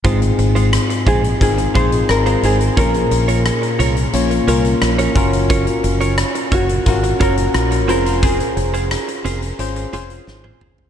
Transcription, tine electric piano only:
X:1
M:4/4
L:1/8
Q:1/4=88
K:Abmix
V:1 name="Tine electric piano"
[A,,CEFA]3 z [CEFB] [CEFA]2 z | [B,,B,DFB]3 z [B,DFd] [B,DFB]2 [DFGB]- | [DFGB]2 z2 [DFGB] [DFGB]2 [DFAc]- | [DFAc]2 z2 [DFAc] [DFAc]2 z |]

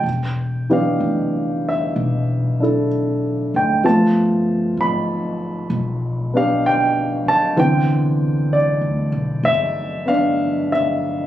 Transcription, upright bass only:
X:1
M:4/4
L:1/8
Q:"Swing" 1/4=64
K:C
V:1 name="Upright bass" clef=bass
E,,,2 F,,,2 B,,,3 D,, | G,,,2 _A,,,2 B,,,3 z | C,,2- (3C,, D,, B,,, G,,,4 |]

